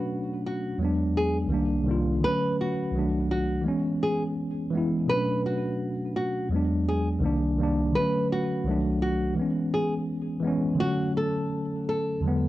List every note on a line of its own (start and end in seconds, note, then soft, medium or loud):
0.00 0.68 B2 medium
0.00 0.68 F#3 medium
0.00 0.69 A3 medium
0.00 0.70 C#4 medium
0.00 0.71 D4 medium
0.00 0.41 F#4 medium
0.46 0.77 F#4 medium
0.78 1.45 E2 medium
0.78 1.46 F#3 medium
0.78 1.47 G#3 medium
0.83 1.47 B3 medium
0.83 1.48 D4 medium
1.17 1.36 G#4 medium
1.47 1.82 C2 medium
1.47 1.83 D#3 medium
1.47 1.83 G3 medium
1.52 1.84 A#3 medium
1.52 1.85 D4 medium
1.84 2.18 C2 medium
1.84 2.19 D#3 medium
1.84 2.20 G3 medium
1.89 2.21 A#3 medium
1.89 2.22 F4 medium
2.21 2.93 D3 medium
2.21 2.94 F#3 medium
2.21 2.55 B4 loud
2.25 2.95 A3 medium
2.25 2.96 C#4 medium
2.61 3.27 F#4 medium
2.92 3.59 C2 medium
2.92 3.60 D#3 medium
2.92 3.61 F#3 medium
2.97 3.62 A3 medium
2.97 3.63 D4 medium
3.31 3.62 F#4 medium
3.62 4.63 E3 medium
3.62 4.64 G#3 medium
3.66 4.65 B3 medium
3.66 4.66 C#4 medium
4.03 4.22 G#4 medium
4.71 5.04 E3 medium
4.71 5.06 G#3 medium
4.75 5.07 B3 medium
4.75 5.08 E4 medium
5.06 6.40 B2 medium
5.06 6.41 F#3 medium
5.06 6.42 A3 medium
5.06 5.41 B4 loud
5.11 6.42 C#4 medium
5.11 6.43 D4 medium
5.46 6.12 F#4 medium
6.16 6.48 F#4 medium
6.49 7.16 E2 medium
6.49 7.17 F#3 medium
6.49 7.18 G#3 medium
6.54 7.19 B3 medium
6.54 7.20 D4 medium
6.89 7.08 G#4 medium
7.19 7.54 C2 loud
7.19 7.54 D#3 medium
7.19 7.55 G3 medium
7.24 7.56 A#3 medium
7.24 7.57 D4 medium
7.56 7.90 C2 medium
7.56 7.91 D#3 medium
7.56 7.92 G3 medium
7.61 7.93 A#3 medium
7.61 7.93 D4 medium
7.93 8.64 D3 medium
7.93 8.66 F#3 medium
7.93 8.26 B4 loud
7.97 8.67 A3 medium
7.97 8.68 C#4 medium
8.32 8.98 F#4 medium
8.64 9.31 C2 medium
8.64 9.31 D#3 medium
8.64 9.33 F#3 medium
8.69 9.33 A3 medium
8.69 9.34 D4 medium
9.02 9.33 F#4 medium
9.35 10.35 E3 medium
9.35 10.36 G#3 medium
9.39 10.37 B3 medium
9.39 10.39 C#4 medium
9.74 9.93 G#4 medium
10.40 10.75 E3 medium
10.40 10.76 G#3 medium
10.44 10.77 B3 medium
10.44 10.78 C#4 medium
10.75 12.10 D3 medium
10.75 12.11 F#3 medium
10.79 12.12 A3 medium
10.79 12.13 C#4 medium
10.79 11.12 F#4 loud
11.17 11.83 A4 medium
11.89 12.20 A4 medium
12.20 12.48 E2 medium
12.20 12.48 D3 medium
12.20 12.48 F#3 medium
12.26 12.48 G#3 medium
12.26 12.48 B3 medium